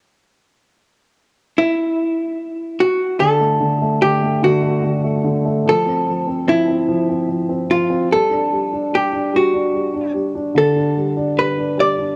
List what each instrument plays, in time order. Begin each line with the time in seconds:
1.58 hollow-body jazz guitar E4
2.80 hollow-body jazz guitar F#4
3.20 upright piano D3, hollow-body jazz guitar A4
3.40 upright piano A3
3.60 upright piano D3
3.82 upright piano A3
4.01 upright piano D3, hollow-body jazz guitar G4
4.22 upright piano A3
4.42 upright piano D3, hollow-body jazz guitar F#4
4.63 upright piano A3
4.83 upright piano D3
5.04 upright piano A3
5.24 upright piano D3
5.45 upright piano A3
5.66 upright piano F3, hollow-body jazz guitar A4
5.86 upright piano C4
6.07 upright piano F3
6.27 upright piano C4
6.47 upright piano F3, hollow-body jazz guitar E4
6.68 upright piano C4
6.89 upright piano F3
7.09 upright piano C4
7.29 upright piano F3
7.49 upright piano C4
7.69 upright piano F3, hollow-body jazz guitar F4
7.90 upright piano C4
8.11 upright piano G3, hollow-body jazz guitar A4
8.31 upright piano D4
8.52 upright piano G3
8.73 upright piano D4
8.92 upright piano G3, hollow-body jazz guitar G4
9.13 upright piano D4
9.33 upright piano G3, hollow-body jazz guitar F#4
9.54 upright piano D4
9.73 upright piano G3
9.94 upright piano D4
10.14 upright piano G3
10.35 upright piano D4
10.55 upright piano D3, hollow-body jazz guitar A4
10.76 upright piano D4
10.96 upright piano G3
11.17 upright piano D4
11.38 upright piano G3, hollow-body jazz guitar B4
11.58 upright piano D4
11.78 upright piano G3, hollow-body jazz guitar D5
11.99 upright piano D4